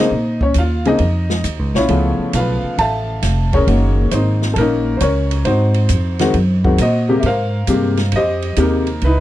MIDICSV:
0, 0, Header, 1, 5, 480
1, 0, Start_track
1, 0, Tempo, 445765
1, 120, Time_signature, 4, 2, 24, 8
1, 9908, End_track
2, 0, Start_track
2, 0, Title_t, "Grand piano"
2, 0, Program_c, 0, 0
2, 0, Note_on_c, 0, 63, 54
2, 0, Note_on_c, 0, 72, 55
2, 0, Note_on_c, 0, 75, 85
2, 424, Note_off_c, 0, 75, 0
2, 426, Note_off_c, 0, 63, 0
2, 427, Note_off_c, 0, 72, 0
2, 459, Note_on_c, 0, 73, 73
2, 469, Note_on_c, 0, 61, 59
2, 601, Note_off_c, 0, 61, 0
2, 609, Note_off_c, 0, 73, 0
2, 627, Note_on_c, 0, 77, 80
2, 644, Note_on_c, 0, 65, 67
2, 917, Note_off_c, 0, 77, 0
2, 923, Note_on_c, 0, 49, 76
2, 926, Note_off_c, 0, 65, 0
2, 927, Note_on_c, 0, 58, 68
2, 933, Note_on_c, 0, 60, 66
2, 934, Note_on_c, 0, 68, 84
2, 940, Note_on_c, 0, 75, 93
2, 951, Note_on_c, 0, 63, 65
2, 1062, Note_off_c, 0, 49, 0
2, 1064, Note_off_c, 0, 58, 0
2, 1067, Note_off_c, 0, 60, 0
2, 1067, Note_off_c, 0, 68, 0
2, 1848, Note_off_c, 0, 75, 0
2, 1853, Note_off_c, 0, 63, 0
2, 1894, Note_on_c, 0, 73, 80
2, 1911, Note_on_c, 0, 65, 60
2, 1912, Note_on_c, 0, 61, 59
2, 1915, Note_on_c, 0, 64, 63
2, 2035, Note_on_c, 0, 49, 57
2, 2040, Note_on_c, 0, 57, 47
2, 2040, Note_on_c, 0, 59, 52
2, 2044, Note_on_c, 0, 53, 53
2, 2487, Note_off_c, 0, 61, 0
2, 2487, Note_off_c, 0, 65, 0
2, 2489, Note_off_c, 0, 64, 0
2, 2531, Note_on_c, 0, 77, 85
2, 2540, Note_off_c, 0, 73, 0
2, 2546, Note_on_c, 0, 71, 61
2, 2547, Note_on_c, 0, 65, 64
2, 2970, Note_off_c, 0, 77, 0
2, 2978, Note_off_c, 0, 71, 0
2, 2979, Note_off_c, 0, 65, 0
2, 3002, Note_on_c, 0, 81, 99
2, 3021, Note_on_c, 0, 76, 74
2, 3024, Note_on_c, 0, 69, 67
2, 3024, Note_on_c, 0, 77, 74
2, 3382, Note_off_c, 0, 49, 0
2, 3385, Note_off_c, 0, 57, 0
2, 3385, Note_off_c, 0, 59, 0
2, 3387, Note_off_c, 0, 53, 0
2, 3762, Note_off_c, 0, 81, 0
2, 3771, Note_off_c, 0, 76, 0
2, 3773, Note_off_c, 0, 69, 0
2, 3773, Note_off_c, 0, 77, 0
2, 3812, Note_on_c, 0, 73, 86
2, 3824, Note_on_c, 0, 68, 57
2, 3830, Note_on_c, 0, 70, 59
2, 3837, Note_on_c, 0, 61, 58
2, 3948, Note_on_c, 0, 51, 58
2, 3952, Note_on_c, 0, 56, 51
2, 3957, Note_on_c, 0, 58, 50
2, 3957, Note_on_c, 0, 66, 55
2, 4403, Note_off_c, 0, 68, 0
2, 4406, Note_off_c, 0, 70, 0
2, 4410, Note_off_c, 0, 61, 0
2, 4433, Note_on_c, 0, 72, 75
2, 4456, Note_on_c, 0, 63, 55
2, 4457, Note_on_c, 0, 60, 55
2, 4459, Note_off_c, 0, 73, 0
2, 4848, Note_off_c, 0, 60, 0
2, 4848, Note_off_c, 0, 63, 0
2, 4879, Note_off_c, 0, 72, 0
2, 4884, Note_on_c, 0, 69, 66
2, 4924, Note_off_c, 0, 69, 0
2, 4932, Note_off_c, 0, 58, 0
2, 4932, Note_on_c, 0, 70, 89
2, 4948, Note_on_c, 0, 58, 64
2, 4953, Note_on_c, 0, 61, 64
2, 4957, Note_on_c, 0, 63, 64
2, 5300, Note_off_c, 0, 51, 0
2, 5302, Note_off_c, 0, 56, 0
2, 5304, Note_off_c, 0, 66, 0
2, 5335, Note_off_c, 0, 58, 0
2, 5337, Note_off_c, 0, 61, 0
2, 5340, Note_off_c, 0, 63, 0
2, 5353, Note_on_c, 0, 72, 54
2, 5368, Note_off_c, 0, 70, 0
2, 5396, Note_on_c, 0, 73, 85
2, 5398, Note_off_c, 0, 72, 0
2, 5415, Note_on_c, 0, 61, 57
2, 5416, Note_on_c, 0, 70, 59
2, 5843, Note_off_c, 0, 73, 0
2, 5853, Note_off_c, 0, 61, 0
2, 5853, Note_off_c, 0, 70, 0
2, 5868, Note_on_c, 0, 72, 84
2, 5891, Note_on_c, 0, 63, 52
2, 5893, Note_on_c, 0, 60, 55
2, 5894, Note_on_c, 0, 66, 57
2, 6664, Note_off_c, 0, 60, 0
2, 6669, Note_off_c, 0, 66, 0
2, 6676, Note_on_c, 0, 51, 78
2, 6678, Note_on_c, 0, 56, 74
2, 6681, Note_on_c, 0, 60, 71
2, 6686, Note_on_c, 0, 66, 86
2, 6818, Note_off_c, 0, 51, 0
2, 6819, Note_off_c, 0, 56, 0
2, 6820, Note_off_c, 0, 60, 0
2, 6823, Note_off_c, 0, 66, 0
2, 7147, Note_on_c, 0, 56, 61
2, 7153, Note_on_c, 0, 51, 65
2, 7154, Note_on_c, 0, 66, 71
2, 7157, Note_on_c, 0, 60, 59
2, 7270, Note_off_c, 0, 72, 0
2, 7281, Note_off_c, 0, 63, 0
2, 7293, Note_off_c, 0, 56, 0
2, 7296, Note_off_c, 0, 51, 0
2, 7297, Note_off_c, 0, 66, 0
2, 7298, Note_off_c, 0, 60, 0
2, 7334, Note_on_c, 0, 66, 58
2, 7338, Note_on_c, 0, 72, 60
2, 7340, Note_on_c, 0, 75, 84
2, 7632, Note_on_c, 0, 48, 69
2, 7632, Note_on_c, 0, 58, 61
2, 7634, Note_on_c, 0, 56, 65
2, 7639, Note_on_c, 0, 67, 76
2, 7731, Note_off_c, 0, 75, 0
2, 7747, Note_on_c, 0, 76, 73
2, 7773, Note_off_c, 0, 66, 0
2, 7775, Note_off_c, 0, 72, 0
2, 7776, Note_off_c, 0, 48, 0
2, 7776, Note_off_c, 0, 58, 0
2, 7777, Note_off_c, 0, 56, 0
2, 7780, Note_off_c, 0, 67, 0
2, 7796, Note_off_c, 0, 76, 0
2, 7817, Note_on_c, 0, 72, 67
2, 7818, Note_on_c, 0, 77, 94
2, 7820, Note_on_c, 0, 70, 73
2, 8271, Note_on_c, 0, 48, 62
2, 8271, Note_on_c, 0, 56, 59
2, 8275, Note_on_c, 0, 58, 53
2, 8280, Note_on_c, 0, 67, 68
2, 8569, Note_off_c, 0, 48, 0
2, 8569, Note_off_c, 0, 56, 0
2, 8571, Note_off_c, 0, 58, 0
2, 8573, Note_off_c, 0, 67, 0
2, 8725, Note_off_c, 0, 72, 0
2, 8727, Note_off_c, 0, 70, 0
2, 8784, Note_on_c, 0, 75, 94
2, 8794, Note_on_c, 0, 72, 59
2, 8796, Note_on_c, 0, 67, 65
2, 8797, Note_off_c, 0, 77, 0
2, 9218, Note_off_c, 0, 75, 0
2, 9223, Note_off_c, 0, 67, 0
2, 9227, Note_on_c, 0, 56, 51
2, 9232, Note_on_c, 0, 48, 63
2, 9234, Note_on_c, 0, 58, 52
2, 9239, Note_on_c, 0, 67, 67
2, 9263, Note_on_c, 0, 70, 75
2, 9275, Note_on_c, 0, 63, 57
2, 9527, Note_off_c, 0, 56, 0
2, 9529, Note_off_c, 0, 48, 0
2, 9531, Note_off_c, 0, 58, 0
2, 9533, Note_off_c, 0, 67, 0
2, 9694, Note_off_c, 0, 72, 0
2, 9705, Note_off_c, 0, 63, 0
2, 9739, Note_on_c, 0, 71, 83
2, 9745, Note_off_c, 0, 70, 0
2, 9753, Note_on_c, 0, 64, 58
2, 9758, Note_on_c, 0, 63, 61
2, 9908, Note_off_c, 0, 63, 0
2, 9908, Note_off_c, 0, 64, 0
2, 9908, Note_off_c, 0, 71, 0
2, 9908, End_track
3, 0, Start_track
3, 0, Title_t, "Upright bass"
3, 0, Program_c, 1, 32
3, 120, Note_on_c, 1, 46, 71
3, 584, Note_off_c, 1, 46, 0
3, 594, Note_on_c, 1, 39, 78
3, 1061, Note_off_c, 1, 39, 0
3, 1073, Note_on_c, 1, 41, 75
3, 1540, Note_off_c, 1, 41, 0
3, 1553, Note_on_c, 1, 39, 80
3, 1713, Note_off_c, 1, 39, 0
3, 1713, Note_on_c, 1, 37, 53
3, 1875, Note_off_c, 1, 37, 0
3, 1879, Note_on_c, 1, 34, 60
3, 2027, Note_off_c, 1, 34, 0
3, 2034, Note_on_c, 1, 37, 81
3, 2338, Note_off_c, 1, 37, 0
3, 2512, Note_on_c, 1, 35, 80
3, 2817, Note_off_c, 1, 35, 0
3, 2992, Note_on_c, 1, 33, 78
3, 3459, Note_off_c, 1, 33, 0
3, 3471, Note_on_c, 1, 29, 82
3, 3939, Note_off_c, 1, 29, 0
3, 3954, Note_on_c, 1, 30, 87
3, 4420, Note_off_c, 1, 30, 0
3, 4431, Note_on_c, 1, 32, 86
3, 4899, Note_off_c, 1, 32, 0
3, 4911, Note_on_c, 1, 34, 83
3, 5379, Note_off_c, 1, 34, 0
3, 5395, Note_on_c, 1, 37, 84
3, 5861, Note_off_c, 1, 37, 0
3, 5867, Note_on_c, 1, 44, 85
3, 6337, Note_off_c, 1, 44, 0
3, 6346, Note_on_c, 1, 41, 83
3, 6817, Note_off_c, 1, 41, 0
3, 6827, Note_on_c, 1, 42, 78
3, 7298, Note_off_c, 1, 42, 0
3, 7309, Note_on_c, 1, 46, 77
3, 7779, Note_off_c, 1, 46, 0
3, 7788, Note_on_c, 1, 44, 72
3, 8258, Note_off_c, 1, 44, 0
3, 8266, Note_on_c, 1, 43, 77
3, 8738, Note_off_c, 1, 43, 0
3, 8753, Note_on_c, 1, 41, 76
3, 9221, Note_off_c, 1, 41, 0
3, 9230, Note_on_c, 1, 39, 83
3, 9700, Note_off_c, 1, 39, 0
3, 9714, Note_on_c, 1, 37, 85
3, 9908, Note_off_c, 1, 37, 0
3, 9908, End_track
4, 0, Start_track
4, 0, Title_t, "Muted upright bass strokes"
4, 2355, Note_on_c, 9, 29, 35
4, 2463, Note_off_c, 9, 29, 0
4, 2839, Note_on_c, 9, 29, 40
4, 2947, Note_off_c, 9, 29, 0
4, 9908, End_track
5, 0, Start_track
5, 0, Title_t, "Drums"
5, 439, Note_on_c, 9, 36, 51
5, 547, Note_off_c, 9, 36, 0
5, 584, Note_on_c, 9, 44, 46
5, 584, Note_on_c, 9, 51, 55
5, 593, Note_on_c, 9, 36, 17
5, 691, Note_off_c, 9, 44, 0
5, 691, Note_off_c, 9, 51, 0
5, 701, Note_off_c, 9, 36, 0
5, 918, Note_on_c, 9, 51, 43
5, 1026, Note_off_c, 9, 51, 0
5, 1061, Note_on_c, 9, 51, 52
5, 1072, Note_on_c, 9, 36, 17
5, 1169, Note_off_c, 9, 51, 0
5, 1179, Note_off_c, 9, 36, 0
5, 1398, Note_on_c, 9, 38, 57
5, 1505, Note_off_c, 9, 38, 0
5, 1549, Note_on_c, 9, 44, 51
5, 1549, Note_on_c, 9, 51, 59
5, 1553, Note_on_c, 9, 36, 23
5, 1657, Note_off_c, 9, 44, 0
5, 1657, Note_off_c, 9, 51, 0
5, 1660, Note_off_c, 9, 36, 0
5, 1883, Note_on_c, 9, 38, 50
5, 1990, Note_off_c, 9, 38, 0
5, 2030, Note_on_c, 9, 51, 60
5, 2033, Note_on_c, 9, 36, 22
5, 2137, Note_off_c, 9, 51, 0
5, 2141, Note_off_c, 9, 36, 0
5, 2511, Note_on_c, 9, 44, 58
5, 2511, Note_on_c, 9, 51, 63
5, 2514, Note_on_c, 9, 36, 20
5, 2619, Note_off_c, 9, 44, 0
5, 2619, Note_off_c, 9, 51, 0
5, 2622, Note_off_c, 9, 36, 0
5, 2994, Note_on_c, 9, 36, 21
5, 2999, Note_on_c, 9, 51, 52
5, 3102, Note_off_c, 9, 36, 0
5, 3106, Note_off_c, 9, 51, 0
5, 3473, Note_on_c, 9, 36, 24
5, 3473, Note_on_c, 9, 44, 54
5, 3473, Note_on_c, 9, 51, 67
5, 3477, Note_on_c, 9, 38, 34
5, 3581, Note_off_c, 9, 36, 0
5, 3581, Note_off_c, 9, 44, 0
5, 3581, Note_off_c, 9, 51, 0
5, 3585, Note_off_c, 9, 38, 0
5, 3800, Note_on_c, 9, 36, 51
5, 3801, Note_on_c, 9, 51, 44
5, 3907, Note_off_c, 9, 36, 0
5, 3908, Note_off_c, 9, 51, 0
5, 3953, Note_on_c, 9, 36, 23
5, 3958, Note_on_c, 9, 51, 56
5, 4061, Note_off_c, 9, 36, 0
5, 4066, Note_off_c, 9, 51, 0
5, 4429, Note_on_c, 9, 44, 55
5, 4429, Note_on_c, 9, 51, 58
5, 4432, Note_on_c, 9, 36, 16
5, 4536, Note_off_c, 9, 44, 0
5, 4536, Note_off_c, 9, 51, 0
5, 4539, Note_off_c, 9, 36, 0
5, 4760, Note_on_c, 9, 38, 38
5, 4868, Note_off_c, 9, 38, 0
5, 4910, Note_on_c, 9, 51, 51
5, 4912, Note_on_c, 9, 36, 18
5, 5018, Note_off_c, 9, 51, 0
5, 5019, Note_off_c, 9, 36, 0
5, 5389, Note_on_c, 9, 44, 47
5, 5389, Note_on_c, 9, 51, 66
5, 5391, Note_on_c, 9, 36, 16
5, 5497, Note_off_c, 9, 44, 0
5, 5497, Note_off_c, 9, 51, 0
5, 5499, Note_off_c, 9, 36, 0
5, 5718, Note_on_c, 9, 51, 49
5, 5826, Note_off_c, 9, 51, 0
5, 5868, Note_on_c, 9, 51, 55
5, 5869, Note_on_c, 9, 36, 22
5, 5976, Note_off_c, 9, 51, 0
5, 5977, Note_off_c, 9, 36, 0
5, 6184, Note_on_c, 9, 51, 44
5, 6292, Note_off_c, 9, 51, 0
5, 6339, Note_on_c, 9, 44, 57
5, 6339, Note_on_c, 9, 51, 59
5, 6348, Note_on_c, 9, 36, 20
5, 6447, Note_off_c, 9, 44, 0
5, 6447, Note_off_c, 9, 51, 0
5, 6456, Note_off_c, 9, 36, 0
5, 6668, Note_on_c, 9, 51, 47
5, 6672, Note_on_c, 9, 38, 48
5, 6775, Note_off_c, 9, 51, 0
5, 6780, Note_off_c, 9, 38, 0
5, 6824, Note_on_c, 9, 51, 49
5, 6828, Note_on_c, 9, 36, 18
5, 6931, Note_off_c, 9, 51, 0
5, 6935, Note_off_c, 9, 36, 0
5, 7154, Note_on_c, 9, 36, 55
5, 7262, Note_off_c, 9, 36, 0
5, 7304, Note_on_c, 9, 44, 62
5, 7304, Note_on_c, 9, 51, 66
5, 7308, Note_on_c, 9, 36, 22
5, 7411, Note_off_c, 9, 44, 0
5, 7411, Note_off_c, 9, 51, 0
5, 7416, Note_off_c, 9, 36, 0
5, 7782, Note_on_c, 9, 51, 54
5, 7788, Note_on_c, 9, 36, 23
5, 7890, Note_off_c, 9, 51, 0
5, 7896, Note_off_c, 9, 36, 0
5, 8261, Note_on_c, 9, 44, 50
5, 8261, Note_on_c, 9, 51, 60
5, 8267, Note_on_c, 9, 36, 21
5, 8368, Note_off_c, 9, 44, 0
5, 8368, Note_off_c, 9, 51, 0
5, 8375, Note_off_c, 9, 36, 0
5, 8586, Note_on_c, 9, 51, 42
5, 8590, Note_on_c, 9, 38, 35
5, 8693, Note_off_c, 9, 51, 0
5, 8698, Note_off_c, 9, 38, 0
5, 8741, Note_on_c, 9, 51, 56
5, 8749, Note_on_c, 9, 36, 20
5, 8849, Note_off_c, 9, 51, 0
5, 8857, Note_off_c, 9, 36, 0
5, 9070, Note_on_c, 9, 51, 41
5, 9178, Note_off_c, 9, 51, 0
5, 9222, Note_on_c, 9, 44, 60
5, 9222, Note_on_c, 9, 51, 61
5, 9230, Note_on_c, 9, 36, 22
5, 9330, Note_off_c, 9, 44, 0
5, 9330, Note_off_c, 9, 51, 0
5, 9338, Note_off_c, 9, 36, 0
5, 9548, Note_on_c, 9, 51, 43
5, 9655, Note_off_c, 9, 51, 0
5, 9707, Note_on_c, 9, 51, 49
5, 9713, Note_on_c, 9, 36, 18
5, 9815, Note_off_c, 9, 51, 0
5, 9821, Note_off_c, 9, 36, 0
5, 9908, End_track
0, 0, End_of_file